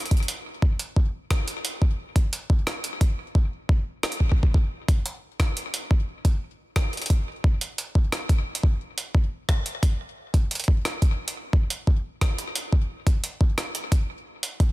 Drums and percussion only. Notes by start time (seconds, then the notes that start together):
0.06 closed hi-hat
0.11 kick, closed hi-hat
0.17 closed hi-hat
0.23 closed hi-hat
0.28 closed hi-hat
0.62 kick
0.79 closed hi-hat
0.96 kick
1.31 kick, cross-stick, closed hi-hat
1.48 closed hi-hat
1.65 closed hi-hat
1.82 kick
2.16 kick, closed hi-hat
2.33 closed hi-hat
2.50 kick
2.67 cross-stick, closed hi-hat
2.84 closed hi-hat
3.01 kick, closed hi-hat
3.35 kick
3.69 kick
4.03 cross-stick, closed hi-hat
4.12 closed hi-hat
4.20 kick
4.32 kick
4.43 kick
4.54 kick
4.88 kick, closed hi-hat
5.06 closed hi-hat
5.40 kick, cross-stick, closed hi-hat
5.57 closed hi-hat
5.74 closed hi-hat
5.91 kick
6.25 kick, closed hi-hat
6.76 kick, cross-stick, closed hi-hat
6.93 closed hi-hat
6.97 closed hi-hat
7.02 closed hi-hat
7.06 closed hi-hat
7.10 kick, closed hi-hat
7.44 kick
7.61 closed hi-hat
7.78 closed hi-hat
7.95 kick
8.12 cross-stick, closed hi-hat
8.29 kick, closed hi-hat
8.55 closed hi-hat
8.63 kick
8.98 closed hi-hat
9.15 kick
9.49 kick, cross-stick, closed hi-hat
9.66 closed hi-hat
9.83 kick, closed hi-hat
10.34 kick, closed hi-hat
10.51 closed hi-hat
10.55 closed hi-hat
10.60 closed hi-hat
10.64 closed hi-hat
10.68 kick
10.85 cross-stick, closed hi-hat
11.02 kick, closed hi-hat
11.28 closed hi-hat
11.53 kick
11.70 closed hi-hat
11.87 kick
12.21 kick, cross-stick, closed hi-hat
12.38 closed hi-hat
12.55 closed hi-hat
12.73 kick
13.07 kick, closed hi-hat
13.24 closed hi-hat
13.41 kick
13.58 cross-stick, closed hi-hat
13.75 closed hi-hat
13.92 kick, closed hi-hat
14.43 closed hi-hat
14.60 kick, closed hi-hat